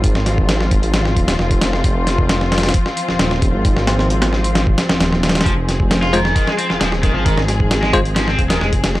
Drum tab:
HH |x---x---x---x-x-x---x-x---x-x---|x---x---x---xxxxx---x---x---x---|x---x---x-x---x-x---x---x---xxxx|x---x---x---x---x---x---x---x---|
SD |--o-o---o-o-----o-o---o-o---o-o-|----o---o-o-oooo--o---o-o-o-----|--o-o-o---o-o---o---o-o-o-o-oooo|----o---o-o---o---o---o-o-o-----|
BD |o-----o-----o-------o-----o-----|o-----o---------o-----------o---|o-----------------o-------------|o-----o---------o-----------o---|

HH |x---x---x---x-x-x---x-x---x-x---|
SD |--o-o---o-o-----o-o---o-o---o-o-|
BD |o-----o-----o-------o-----o-----|